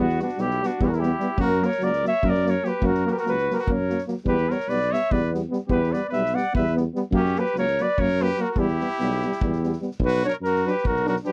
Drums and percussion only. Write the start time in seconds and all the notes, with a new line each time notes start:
0.09 snare
0.19 snare
0.28 snare
0.38 snare
0.50 snare
0.63 snare
0.81 kick
0.92 snare
1.03 snare
1.20 snare
1.38 kick
1.49 snare
1.62 snare
1.71 snare
1.80 snare
1.93 snare
2.05 snare
2.23 kick
2.34 snare
2.46 snare
2.64 snare
2.82 kick
2.94 snare
3.07 snare
3.17 snare
3.26 snare
3.38 snare
3.50 snare
3.58 snare
3.67 kick
3.89 snare
3.98 snare
4.08 snare
4.17 snare
4.26 kick
4.37 snare
4.50 snare
4.60 snare
4.69 snare
4.81 snare
4.93 snare
5.11 kick
5.34 snare
5.53 snare
5.69 kick
5.83 snare
5.93 snare
6.13 snare
6.25 snare
6.37 snare
6.55 kick
6.67 snare
6.77 snare
6.95 snare
7.13 kick
7.25 snare
7.36 snare
7.46 snare
7.55 snare
7.67 snare
7.78 snare
7.98 kick
8.08 snare
8.19 snare
8.37 snare
8.56 kick
8.68 snare
8.80 snare
8.99 snare
9.11 snare
9.22 snare
9.32 snare
9.41 kick
9.52 snare
9.63 snare
9.72 snare
9.82 snare
9.91 snare
10.00 kick
10.13 snare
10.25 snare
10.44 snare
10.56 snare
10.67 snare
10.77 snare
10.85 kick
10.96 snare
11.06 snare
11.16 snare
11.24 snare